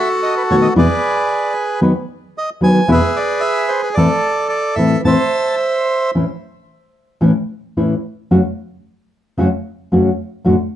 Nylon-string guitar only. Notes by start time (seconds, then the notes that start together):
0.50 B2 D#3 A3 B3 F#4
0.75 E2 B2 E3 G#3 B3 E4
1.81 D#3 F#3 B3 D#4 B4
2.61 D#3 F#3 B3 D#4 B4
2.88 E2 B2 E3 G#3 B3 E4
3.97 A2 E3 A3 C4 E4
4.76 A2 E3 A3 C4 E4
5.05 A2 E3 A3 C4 E4
6.15 A2 E3 A3 C#4 E4
7.21 A2 E3 A3 C#4 E4
7.77 A2 E3 A3 C#4 E4
8.31 F#2 C#3 F#3 A3 C#4 F#4
9.38 F#2 C#3 F#3 A3 C#4 F#4
9.92 F#2 C#3 F#3 A3 C#4 F#4
10.45 F#2 A2 D3 A3 D4 F#4